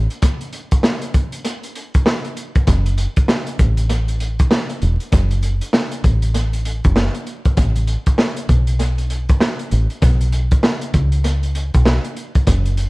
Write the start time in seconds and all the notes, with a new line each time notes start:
0.10 closed hi-hat
0.22 kick, closed hi-hat
0.41 closed hi-hat
0.53 closed hi-hat
0.71 kick, closed hi-hat
0.83 snare
1.02 closed hi-hat
1.14 kick, closed hi-hat
1.32 closed hi-hat
1.45 closed hi-hat
1.63 closed hi-hat
1.75 closed hi-hat
1.94 kick, closed hi-hat
2.06 snare
2.25 closed hi-hat
2.37 closed hi-hat
2.55 kick, closed hi-hat
2.67 F#1, kick, closed hi-hat
2.86 closed hi-hat
2.98 closed hi-hat
3.16 kick, closed hi-hat
3.28 snare
3.47 closed hi-hat
3.59 A1, kick, closed hi-hat
3.77 closed hi-hat
3.90 closed hi-hat
4.08 closed hi-hat
4.20 closed hi-hat
4.39 kick, closed hi-hat
4.51 snare
4.69 closed hi-hat
4.82 E1, closed hi-hat
5.00 closed hi-hat
5.12 F#1, kick, closed hi-hat
5.31 closed hi-hat
5.43 closed hi-hat
5.61 closed hi-hat
5.73 snare
5.92 closed hi-hat
6.04 A1, kick, closed hi-hat
6.22 closed hi-hat
6.34 closed hi-hat
6.53 closed hi-hat
6.65 closed hi-hat
6.84 F#1, kick, closed hi-hat
6.96 snare
7.14 closed hi-hat
7.27 closed hi-hat
7.45 kick, closed hi-hat
7.57 A1, kick, closed hi-hat
7.76 closed hi-hat
7.87 closed hi-hat
8.06 kick, closed hi-hat
8.18 snare
8.36 closed hi-hat
8.49 B1, kick, closed hi-hat
8.67 closed hi-hat
8.79 closed hi-hat
8.98 closed hi-hat
9.10 closed hi-hat
9.29 kick, closed hi-hat
9.40 snare
9.59 closed hi-hat
9.71 A1, closed hi-hat
9.90 closed hi-hat
10.02 B1, kick, closed hi-hat
10.21 closed hi-hat
10.32 closed hi-hat
10.51 kick, closed hi-hat
10.63 snare
10.81 closed hi-hat
10.94 C#2, kick, closed hi-hat
11.12 closed hi-hat
11.24 closed hi-hat
11.43 closed hi-hat
11.55 closed hi-hat
11.74 B1, kick, closed hi-hat
11.85 snare
12.04 closed hi-hat
12.16 closed hi-hat
12.35 kick, closed hi-hat
12.47 F#1, kick, closed hi-hat
12.65 closed hi-hat
12.77 closed hi-hat